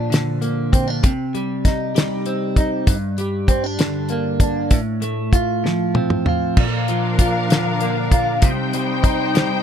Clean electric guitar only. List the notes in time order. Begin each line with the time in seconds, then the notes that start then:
Already playing: A#2 F3 D4
0.10 D3
0.41 A#3
0.73 C4
0.88 D4
1.03 C3
1.34 G3
1.65 D#4
1.95 G3
2.26 C4
2.58 D#4
2.87 G2
3.18 G3
3.48 C4
3.64 D4
3.79 D3
4.10 A#3
4.41 D4
4.72 A2
5.02 A3
5.33 F4
5.64 F3
5.94 C4
6.26 F4
6.58 A#2
6.89 F3
7.19 F4
7.51 D3
7.82 A#3
8.12 F4
8.42 C3
8.74 G3
9.03 D#4
9.35 G3